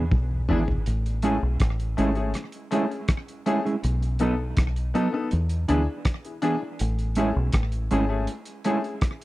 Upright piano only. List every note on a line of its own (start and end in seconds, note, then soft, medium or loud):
0.49 0.63 D4 medium
0.49 0.63 E4 medium
0.49 0.64 G#4 loud
1.23 1.37 A3 medium
1.23 1.38 C#4 medium
1.23 1.38 G#4 loud
1.97 2.11 A3 medium
1.97 2.12 C#4 medium
1.97 2.12 G#4 medium
2.15 2.29 A3 medium
2.15 2.30 C#4 medium
2.15 2.30 G#4 medium
2.71 2.85 A3 medium
2.71 2.86 C#4 medium
2.71 2.86 G#4 medium
2.90 2.98 C#4 soft
2.90 2.98 G#4 soft
3.46 3.60 A3 medium
3.46 3.60 C#4 medium
3.46 3.61 G#4 loud
4.20 4.34 B3 medium
4.20 4.34 D#4 medium
4.20 4.35 A4 medium
4.94 5.08 B3 medium
4.94 5.09 D#4 medium
4.94 5.09 A4 loud
5.13 5.27 B3 medium
5.13 5.27 D#4 medium
5.13 5.27 A4 medium
5.68 5.83 D4 medium
5.68 5.83 E4 medium
5.68 5.83 G#4 medium
6.25 6.32 E4 soft
6.25 6.32 G#4 soft
6.42 6.56 D4 medium
6.42 6.57 E4 medium
6.42 6.57 G#4 loud
7.17 7.31 A3 medium
7.17 7.31 C#4 medium
7.17 7.32 G#4 medium
7.91 8.05 A3 medium
7.91 8.05 C#4 medium
7.91 8.06 G#4 loud
8.09 8.23 A3 medium
8.09 8.23 C#4 medium
8.09 8.24 G#4 medium
8.65 8.79 A3 medium
8.65 8.79 C#4 medium
8.65 8.80 G#4 medium
8.84 8.91 C#4 soft
8.84 8.91 G#4 soft